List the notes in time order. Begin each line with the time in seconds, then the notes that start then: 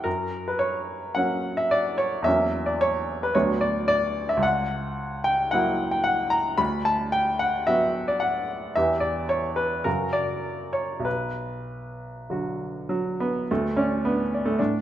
0.04 F#2 A#4
0.48 B4
0.59 C#5
1.15 F#3 A#3 C#4 F#5
1.57 E5
1.71 D5
1.98 C#5
2.22 E2 F#3 A#3 E5
2.26 C#4
2.66 D5
2.81 C#5
3.23 B4
3.35 D2 F#3 B3 D4 C#5
3.61 D5
3.88 D5
4.29 E5
4.37 C#2
4.43 F#5
5.24 G5
5.51 F#3 A#3 E4 F#5
5.91 G5
6.04 F#5
6.30 A#5
6.58 D2 B5
6.85 A5
7.12 G5
7.39 F#5
7.67 F#3 B3 F#4 E5
8.08 D5
8.20 F#5
8.76 E2 E3 B3 G4 E5
9.00 D5
9.29 C#5
9.56 B4
9.84 F#2 C#3 F#3 F#4 A#4
10.13 D5
10.73 C#5
11.00 B1
11.05 B4
12.30 D3 F#3 F#4
12.89 F#3
13.20 B3
13.51 D2 A3
13.77 C#4 D5
14.05 B3 D4
14.34 D5
14.46 A3
14.59 A2 D4